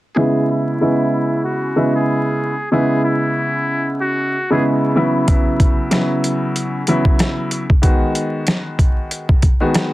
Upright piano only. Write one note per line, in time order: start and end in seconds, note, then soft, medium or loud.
0.16 0.76 C#3 medium
0.16 0.76 G#3 medium
0.16 0.76 B3 medium
0.16 0.77 E4 loud
0.81 1.70 C#3 medium
0.81 1.70 G#3 medium
0.81 1.71 B3 medium
0.81 1.71 E4 loud
1.76 2.51 C#3 medium
1.76 2.51 G#3 medium
1.76 2.51 B3 medium
1.76 2.52 E4 medium
2.72 4.34 C#3 medium
2.72 4.34 G#3 medium
2.72 4.34 B3 medium
2.72 4.34 E4 loud
4.51 4.93 C#3 loud
4.51 4.93 G#3 medium
4.51 4.93 B3 medium
4.51 4.93 E4 medium
4.96 5.26 C#3 medium
4.96 5.26 F#3 medium
4.96 5.26 B3 medium
4.96 5.26 E4 loud
5.27 5.87 C#3 medium
5.27 5.87 F#3 medium
5.27 5.87 B3 medium
5.27 5.88 E4 medium
5.91 6.80 C#3 medium
5.91 6.81 F#3 medium
5.91 6.81 B3 medium
5.91 6.81 E4 medium
6.88 7.62 C#3 medium
6.88 7.62 F#3 medium
6.88 7.63 B3 medium
6.88 7.63 E4 loud
7.82 9.44 D#3 medium
7.82 9.45 G#3 medium
7.82 9.45 B3 medium
7.82 9.45 F#4 loud
9.61 9.93 D#3 medium
9.61 9.93 G#3 medium
9.61 9.93 B3 medium
9.61 9.93 F#4 medium